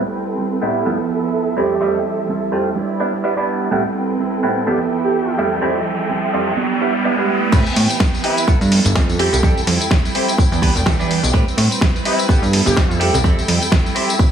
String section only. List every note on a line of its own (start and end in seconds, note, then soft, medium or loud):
0.00 0.85 C4 medium
0.00 2.73 A4 medium
0.00 0.85 B4 medium
0.00 3.68 G5 medium
0.86 1.56 F3 medium
0.86 1.57 B4 medium
0.86 2.75 E5 medium
1.57 2.75 F3 medium
2.77 3.71 E4 medium
2.77 3.71 D5 medium
3.72 4.66 C4 medium
3.72 6.55 A4 medium
3.72 4.66 B4 medium
3.72 7.49 G5 medium
4.67 6.56 F3 medium
4.67 5.38 B4 medium
4.67 6.56 E5 medium
6.57 7.52 E4 medium
6.57 7.52 D5 medium
7.52 9.17 B4 medium
7.52 8.47 G5 medium
8.48 11.31 E4 medium
8.48 10.36 A4 medium
9.20 12.26 G5 medium
10.38 11.32 D5 medium
11.34 12.28 C4 medium
11.34 12.99 B4 medium
12.29 13.00 E4 medium
12.29 14.18 A4 medium
13.01 14.32 E4 medium
13.01 14.18 G5 medium
14.19 14.32 D5 medium
14.19 14.32 G5 medium